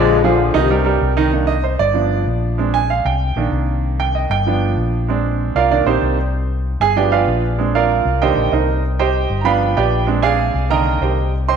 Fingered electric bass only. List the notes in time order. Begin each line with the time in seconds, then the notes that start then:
Already playing: A#1
0.54 C2
1.01 C2
1.79 G1
2.26 A#1
3.05 C2
3.36 A#1
3.51 C2
4.30 G1
4.77 A#1
5.55 C2
5.85 A#1
6.02 C2
6.80 G1
7.27 A#1
8.05 C2
8.36 A#1
8.52 C2
9.30 G1
9.77 A#1
10.54 C2
11.01 C2